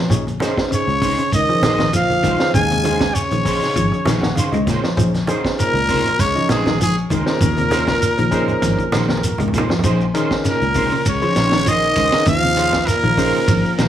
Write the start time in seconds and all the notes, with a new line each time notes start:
0.09 A#1 F3 C#4 D#4 G#4 C#5, kick, closed hi-hat, low conga, shekere
0.27 closed hi-hat, high conga, shekere
0.40 C#4 D#4 G#4 C5, muted clean electric guitar stroke, snare, closed hi-hat, high conga, shekere
0.57 kick, snare, shekere
0.71 C#3 C#5, closed hi-hat, shekere
0.88 C#2, shekere
1.02 C3 C#4 D#4 G#4 C5, kick, open hi-hat, shekere
1.18 C#3, closed hi-hat, shekere
1.32 C#2 D#3 D#5, kick, closed hi-hat, shekere
1.49 F3 C#4 D#4 G#4 C5, shekere
1.62 A#1 C#4 D#4 G#4 C5, snare, closed hi-hat, high conga, shekere
1.78 D#3, snare, low conga, shekere
1.93 F3 F5, closed hi-hat, high conga, shekere
2.10 high conga, shekere
2.23 C#2 D#3 C#4 D#4 G#4 C5, kick, closed hi-hat, high conga, shekere
2.39 C#4 D#4 G#4 C5, snare, shekere
2.54 D#2 C#3 G#3 G#5, kick, closed hi-hat, low conga, shekere
2.69 C3 G#4 C5, closed hi-hat, high conga, shekere
2.83 C#4 D#4 G#4 C5, closed hi-hat, high conga, shekere
3.00 C#3, kick, snare, shekere
3.14 C#3 C#5, closed hi-hat, shekere
3.31 A#1 D#3 G#4 C5, closed hi-hat, shekere
3.45 C#3 C#4 D#4 G#4 C5 C#5, kick, open hi-hat, shekere
3.62 snare, shekere
3.76 G#1 F3, kick, closed hi-hat, shekere
3.92 high conga, shekere
4.05 A#1 D#3 C#4 D#4 G#4 G#5, muted clean electric guitar stroke, snare, closed hi-hat, high conga, shekere
4.21 D#3 F#5, snare, low conga, shekere
4.35 C#4 D#4 G#4 C5 F5, closed hi-hat, high conga, shekere
4.52 C#2 G#3 D#5, closed hi-hat, high conga, shekere
4.66 A#2 C#4 D#4 G#4 C5 C#5, kick, snare, closed hi-hat, high conga, shekere
4.83 F3, muted fingered electric bass stroke, snare, shekere
4.97 A#1 F3 C#4 D#4 G#4 C5, kick, closed hi-hat, low conga, shekere
5.14 snare, closed hi-hat, high conga, shekere
5.27 C#4 D#4 G#4 C5, closed hi-hat, high conga, shekere
5.45 kick, snare, shekere
5.59 A#2 C#3 A#4, closed hi-hat, shekere
5.74 C#2, shekere
5.89 C3 C#4 D#4 G#4 C5, kick, open hi-hat, shekere
6.04 closed hi-hat, low conga, shekere
6.19 C#2 C#3 C#5, kick, snare, closed hi-hat, shekere
6.35 F3 C#4 D#4 G#4 D#5, shekere
6.49 A#1 G#2 C#4 D#4 G#4 C5, snare, closed hi-hat, high conga, shekere
6.66 D#3, snare, low conga, shekere
6.79 G#2 F3 G#4, closed hi-hat, high conga, shekere
6.98 shekere
7.10 C#2 A#2 D#3 C#4 D#4 G#4 A#4 C5, kick, closed hi-hat, high conga, shekere
7.26 C#4 D#4 G#4 C5, muted fingered electric bass stroke, snare, shekere
7.40 D#2 C#3, kick, closed hi-hat, low conga, shekere
7.57 C3 G#4 C5, closed hi-hat, high conga, shekere
7.70 C#4 D#4 G#4 C5 C#5, snare, closed hi-hat, high conga, shekere
7.87 C#3, kick, snare, shekere
8.02 closed hi-hat, shekere
8.17 A#1 D#3 G#4 C5, closed hi-hat, shekere
8.31 C#3 C#4 D#4 G#4 C5, kick, closed hi-hat, shekere
8.48 low conga, shekere
8.62 G#1 F3, kick, snare, closed hi-hat, shekere
8.78 kick, high conga, shekere
8.92 A#1 D#3 C#4 D#4 G#4 C5, snare, closed hi-hat, high conga, shekere
9.09 D#3, snare, high conga, shekere
9.17 high conga
9.23 closed hi-hat, shekere
9.27 low conga
9.38 C#2 G#3, closed hi-hat, low conga, shekere
9.48 low conga
9.54 A#2 C#4 D#4 G#4 C5, kick, closed hi-hat, shekere
9.58 low conga
9.69 F3, muted fingered electric bass stroke, snare, low conga, shekere
9.79 low conga
9.83 A#1 F3 C#4 D#4 G#4 C5, kick, ride bell, shekere
10.01 shekere
10.14 D#3 C#4 D#4 G#4 A#4 C5, ride bell, shekere
10.31 kick, snare, shekere
10.45 C#3, snare, ride bell, shekere
10.49 A#2 A#4
10.62 C#2, shekere
10.74 C3 C#4 D#4 G#4 C5, kick, open hi-hat, shekere
10.91 C#3, shekere
11.06 C#2 C#3 C#5, kick, ride bell, shekere
11.22 F3 C#4 D#4 G#4 C5 C#5, shekere
11.36 A#1 C#4 D#4 C5, snare, ride bell, shekere
11.52 D#3, snare, shekere
11.66 D#3 F3 C#4 D#4 G#4 C5 D#5, ride bell, shekere
11.82 shekere
11.96 C#2 C#4 D#4 G#4 C5, muted clean electric guitar stroke, kick, ride bell, shekere
12.12 C#4 D#4 G#4 D#5, muted fingered electric bass stroke, snare, ride bell, shekere
12.26 D#2 C#3 F3 F5, kick, ride bell, shekere
12.42 C3 G#4 C5, shekere
12.57 C#4 D#4 G#4 C5, snare, ride bell, shekere
12.73 muted clean electric guitar stroke, kick, snare, shekere
12.87 A#2 A#4, ride bell, shekere
13.03 A#1 D#3 G#4 C5, shekere
13.17 C#3 C#4 D#4 G#4 C5, kick, open hi-hat, shekere
13.34 shekere
13.48 G#1 F3, kick, ride bell, shekere
13.65 shekere
13.78 A#1 D#3 C#4 D#4 G#4 C5, snare, ride bell, shekere